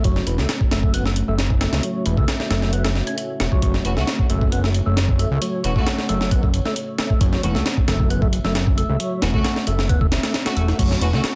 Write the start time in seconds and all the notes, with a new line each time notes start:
Already playing: A3 C#4 F#4
0.04 F#1 F#3 E5, kick, closed hi-hat
0.16 snare
0.27 E1 E3, closed hi-hat
0.38 C#2 A3, snare
0.49 snare, closed hi-hat
0.61 kick
0.71 F#1 A3, snare, closed hi-hat
0.83 kick
0.94 B3, closed hi-hat
1.06 A3, snare
1.16 closed hi-hat
1.28 F#1 A3
1.38 snare, closed hi-hat
1.50 kick
1.61 A3, snare, closed hi-hat
1.73 C#2, snare, closed hi-hat
1.83 F#3, closed hi-hat
2.06 E1 E3, closed hi-hat
2.17 C#2 A3, kick
2.28 snare, closed hi-hat
2.40 snare
2.51 F#1 A3, snare, closed hi-hat
2.62 snare
2.73 B3, closed hi-hat
2.84 A3, snare, closed hi-hat
2.95 snare
3.07 C#4, closed hi-hat
3.18 closed hi-hat
3.40 E1 F#4, snare, closed hi-hat
3.52 C#2 F#3, kick
3.62 F#1 F#3 C#5, kick, closed hi-hat
3.74 snare
3.85 E1 E3 A3 C#4 F#4, closed hi-hat
3.97 C#2 A3 C#4 F#4, snare
4.07 snare, closed hi-hat
4.19 kick
4.30 F#1 A3, closed hi-hat
4.41 kick
4.52 B3, closed hi-hat
4.64 A3, snare
4.74 closed hi-hat
4.86 F#1 A3
4.97 snare, closed hi-hat
5.09 kick
5.19 A3, closed hi-hat
5.31 C#2
5.42 F#3, closed hi-hat
5.64 E1 E3 A3 C#4 F#4, closed hi-hat
5.76 C#2 A3 C#4 F#4, kick
5.87 snare, closed hi-hat
5.98 snare
6.09 F#1 A3, closed hi-hat
6.21 snare
6.31 B3, kick, closed hi-hat
6.43 A3, kick
6.54 closed hi-hat
6.65 A3, snare
6.76 closed hi-hat
6.99 A3, snare, closed hi-hat
7.10 kick
7.21 F#1 F#3 E5, kick, closed hi-hat
7.33 snare
7.43 E1 E3 A3 C#4 F#4, closed hi-hat
7.55 C#2 A3, snare
7.66 snare, closed hi-hat
7.77 kick
7.88 F#1 A3, snare, closed hi-hat
8.00 kick
8.10 B3, closed hi-hat
8.22 A3, kick
8.33 closed hi-hat
8.44 F#1 A3, snare
8.55 snare, closed hi-hat
8.67 kick
8.78 A3, closed hi-hat
8.89 C#2
9.00 F#3, closed hi-hat
9.22 E1 E3 A3 C#4 F#4, snare, closed hi-hat
9.34 C#2 A3 C#4 F#4, kick
9.44 snare, closed hi-hat
9.56 snare
9.67 F#1 A3, closed hi-hat
9.79 snare
9.89 B3, kick, closed hi-hat
10.01 A3, kick
10.12 snare, closed hi-hat
10.23 A3, snare, closed hi-hat
10.34 snare, closed hi-hat
10.46 A3 C#4 F#4, snare, closed hi-hat
10.57 E1 A3, closed hi-hat
10.68 snare
10.79 F#1 F#3, kick, closed hi-hat, crash
10.91 snare
11.01 E1 E3 A3 C#4 F#4, closed hi-hat
11.13 C#2 A3 C#4 F#4, snare
11.24 snare, closed hi-hat